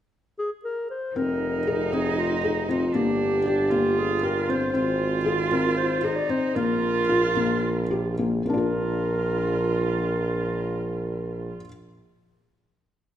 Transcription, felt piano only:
1.16 C4
1.67 G#4
1.92 C4
2.44 G#4
2.69 C4
2.95 A#3
3.46 G4
3.72 A#3
4.23 G4
4.49 C4
4.74 C4
5.25 G#4
5.51 C4
6.04 G#4
6.29 C4
6.56 A#3
7.09 F4
7.36 A#3
7.91 G4
8.19 A#3
8.46 A#3 D4
8.54 F4 A#4

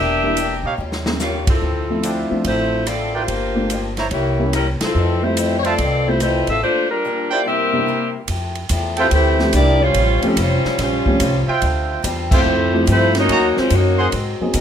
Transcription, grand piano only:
0.23 G3 A#3 D4 E4
1.05 G3 A#3 C#4 G4
1.90 F3 A3 C4 E4
2.30 F3 A3 C4 D4
3.55 A3 A#3 D4 F4
4.39 G3 A#3 C#4 E4
5.22 G3 A3 C4 E5
6.07 G3 A3 C4 F4
7.73 C3 G3 A#3 D4 E4
9.39 F3 A3 C4 E4 G4
10.23 F3 A3 C4 C#4 G4
11.07 F3 A3 C4 C#4 G4
12.73 F3 A3 C4 E4 G4
14.41 F#3 A#3 C4 D#4 G#4

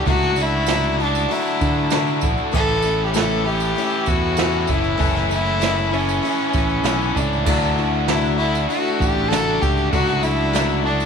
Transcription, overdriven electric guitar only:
0.06 D3 A3 D4 F#4
0.98 D3 A3 D4 F#4
1.91 D3 A3 D4 F#4
2.52 A2 E3 A3 C#4
2.57 E4
3.45 A2 E3 A3 C#4 E4
4.39 A2 E3 A3 C#4 E4
4.97 A2 E3 A3 C#4 E4
5.91 A2 E3 A3 C#4 E4
6.84 A2 E3 A3 C#4 E4
7.46 D3 A3 D4 F#4
8.38 D3 A3 D4 F#4
9.32 D3 A3 D4 F#4
9.92 D3 A3 D4 F#4
10.85 D3 A3 D4 F#4

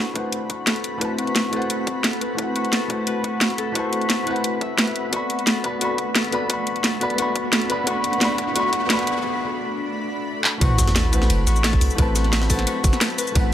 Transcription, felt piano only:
Already playing: A3 E4 B4 C5 F#5
0.14 A3 E4 B4 C5 F#5
0.98 A3 E4 B4
1.03 C4 A5
1.49 A3 E4 B4
1.55 C5 F#5
2.35 A3 E4 B4
2.40 C4 F#5
2.88 A3 E4 B4 C5 F#5
3.72 A3 E4 B4
3.77 C5 A5
4.24 A3 E4 B4
4.29 C4 F#5
5.09 B3 F#4 A4
5.15 D5 B5
5.63 B3 F#4 A4 D5 B5
5.78 B3 F#4 A4
5.83 D5 B5
6.31 B3 F#4 A4 D5 B5
6.46 B3 F#4 A4
6.52 D5 B5
7.00 B3 F#4 A4 D5 B5
7.15 B3 F#4 A4
7.20 D5 B5
7.68 B3 F#4 A4 D5 B5
7.84 B3 F#4 A4
7.89 D5 B5
8.18 B3 F#4 A4
8.23 D5 B5
8.52 B3 F#4 A4
8.58 D5 B5
8.86 B3 F#4 A4
8.92 D5 B5
10.58 A3 E4 B4
10.63 C5 F#5
11.11 A3 E4 B4 C5 F#5
11.95 A3 E4 B4
12.00 C4 A5
12.46 A3 E4 B4
12.52 C5 F#5
13.32 A3 E4 B4
13.37 C4 F#5

